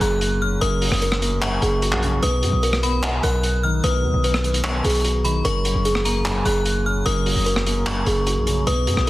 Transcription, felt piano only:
0.00 0.61 F#2 medium
0.00 0.21 F#3 medium
0.00 0.62 A#3 medium
0.42 1.42 C#3 medium
0.61 1.41 F#2 loud
0.82 1.82 F#3 medium
1.22 2.23 A#3 medium
1.42 2.23 F#2 medium
2.03 2.23 C#3 medium
2.23 3.02 B2 loud
2.42 3.43 F#3 medium
2.83 3.84 B3 medium
3.64 4.64 D#3 medium
3.84 4.62 B2 loud
4.03 5.04 F#3 medium
4.45 5.45 B4 medium
5.24 5.45 D#3 medium
5.45 6.24 F#2 loud
5.64 6.65 F#3 medium
6.06 7.06 A#3 medium
6.26 7.04 F#2 medium
6.86 7.86 C#3 medium
7.05 7.85 F#2 loud
7.26 8.27 F#3 medium
7.67 8.67 A#3 medium
7.87 8.67 F#2 medium
8.47 8.67 C#3 medium
8.67 9.10 B2 loud
8.87 9.10 F#3 medium

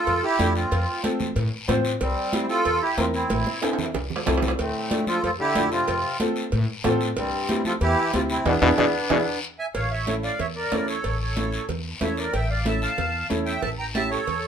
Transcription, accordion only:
0.00 0.22 F4 medium
0.00 0.24 A4 loud
0.23 0.54 E4 medium
0.23 0.53 G4 loud
0.56 1.01 C4 medium
0.56 1.01 F4 medium
2.01 2.46 G3 medium
2.01 2.46 C4 loud
2.50 2.80 F4 medium
2.50 2.83 A4 loud
2.82 2.97 E4 medium
2.82 2.97 G4 loud
2.98 3.05 C4 medium
2.98 3.05 F4 medium
3.15 3.59 C4 medium
3.15 3.59 E4 medium
4.59 5.04 A3 medium
4.59 5.04 C4 medium
5.07 5.22 F4 medium
5.07 5.22 A4 loud
5.23 5.31 F4 medium
5.23 5.31 A4 loud
5.40 5.70 E4 medium
5.40 5.70 G4 loud
5.72 6.17 C4 medium
5.72 6.17 F4 medium
7.17 7.62 G3 medium
7.17 7.62 C4 loud
7.66 7.73 F4 medium
7.66 7.73 A4 loud
7.82 8.12 E4 medium
7.82 8.12 G4 loud
8.14 8.22 C4 medium
8.14 8.21 F4 loud
8.30 8.45 C4 medium
8.30 8.45 E4 loud
8.47 9.39 B3 medium
8.47 9.39 D4 medium
9.59 9.66 E5 medium
9.59 9.66 G#5 loud
9.75 9.90 C#5 medium
9.75 9.91 F5 loud
9.91 10.06 C#5 medium
9.91 10.06 E5 medium
10.07 10.15 C#5 medium
10.07 10.15 E5 medium
10.23 10.39 D5 medium
10.23 10.40 F5 medium
10.39 10.47 C#5 medium
10.39 10.47 E5 loud
10.56 10.86 A#4 medium
10.56 10.89 D5 medium
10.88 11.18 A4 medium
10.88 11.18 C#5 medium
11.20 11.66 A4 medium
11.20 11.65 C#5 medium
12.01 12.17 C#5 medium
12.01 12.16 E5 medium
12.18 12.33 A#4 medium
12.18 12.34 D5 medium
12.33 12.49 E5 medium
12.33 12.48 G5 medium
12.49 12.65 D5 medium
12.49 12.66 F5 medium
12.65 12.81 E5 medium
12.65 12.80 A5 medium
12.82 13.28 F5 medium
12.82 13.27 A5 loud
13.46 13.62 E5 medium
13.46 13.61 G5 medium
13.62 13.71 E5 medium
13.62 13.69 A5 loud
13.78 13.87 G5 medium
13.78 13.85 A#5 medium
13.94 14.10 E5 medium
13.94 14.10 A5 loud
14.11 14.47 A4 medium
14.11 14.47 C#5 medium

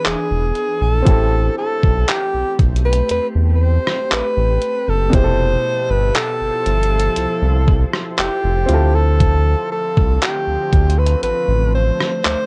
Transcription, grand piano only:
0.00 1.01 D4 medium
0.00 1.02 E4 medium
0.00 1.04 G#4 medium
0.00 1.08 B4 medium
1.03 5.07 C4 medium
1.03 5.09 E4 medium
1.08 5.10 G4 medium
1.08 5.11 A4 medium
5.10 8.64 B2 medium
5.10 8.65 E4 medium
5.15 8.66 G4 medium
5.15 5.22 G#4 medium
5.24 8.71 A4 medium
8.66 12.46 C4 medium
8.66 12.46 E4 medium
8.71 12.46 F4 medium
8.71 12.46 A4 medium

